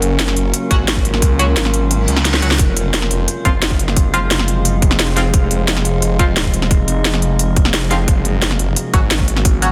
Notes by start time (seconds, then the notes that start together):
Already playing: F#1 C#3 F#3 A#3 C#4 F4 A#4
0.02 closed hi-hat
0.19 snare, closed hi-hat
0.28 snare
0.36 F#1, closed hi-hat
0.54 closed hi-hat
0.71 G#1 F#3 C#4 F#4, kick, closed hi-hat
0.88 snare, closed hi-hat
0.96 kick
1.05 closed hi-hat
1.14 snare
1.22 C#2, kick, closed hi-hat
1.39 F#3 C#4 F#4, closed hi-hat
1.56 G#1, snare, closed hi-hat
1.65 snare
1.74 closed hi-hat
1.91 closed hi-hat, reverse cymbal
2.08 C#2, closed hi-hat
2.17 snare
2.25 snare, closed hi-hat
2.34 snare
2.42 F#3 C#4 F#4, closed hi-hat
2.51 snare
2.59 F1 C3 F3 G#3 C4 F4, kick, closed hi-hat
2.77 closed hi-hat
2.91 G#4, snare, closed hi-hat
3.02 snare
3.11 F1 F5, closed hi-hat
3.28 closed hi-hat
3.45 F#1 F3 C4 F4, kick, closed hi-hat
3.62 snare, closed hi-hat
3.71 kick
3.79 closed hi-hat
3.88 snare
3.96 kick, closed hi-hat
4.14 F3 C4 F4, closed hi-hat
4.31 snare, closed hi-hat
4.39 snare
4.48 closed hi-hat
4.65 closed hi-hat
4.82 F1, kick, closed hi-hat
4.91 snare
4.99 snare, closed hi-hat
5.17 F3 C4 F4, snare, closed hi-hat
5.34 F1 D#4, kick, closed hi-hat
5.51 closed hi-hat
5.68 snare, closed hi-hat
5.77 snare
5.85 F1, closed hi-hat
6.02 F1, closed hi-hat
6.19 F3 C4 F4, kick, closed hi-hat
6.36 D#1, snare, closed hi-hat
6.45 kick
6.54 closed hi-hat
6.62 snare
6.71 kick, closed hi-hat
6.88 F1, closed hi-hat
7.05 snare, closed hi-hat
7.14 snare
7.22 closed hi-hat
7.39 closed hi-hat
7.56 kick, closed hi-hat
7.65 snare
7.74 snare, closed hi-hat
7.91 F3 C4 F4, snare, closed hi-hat
8.08 F#1 C#3 F#3 A#3 C#4 F#4, kick, closed hi-hat
8.20 A#4
8.25 closed hi-hat
8.42 snare, closed hi-hat
8.51 snare
8.59 F#1, closed hi-hat
8.76 closed hi-hat
8.94 G#1 F#3 C#4 F#4 F#5, kick, closed hi-hat
9.11 snare, closed hi-hat
9.19 kick
9.28 closed hi-hat
9.36 snare
9.45 kick, closed hi-hat
9.62 F#3 C#4 F#4, closed hi-hat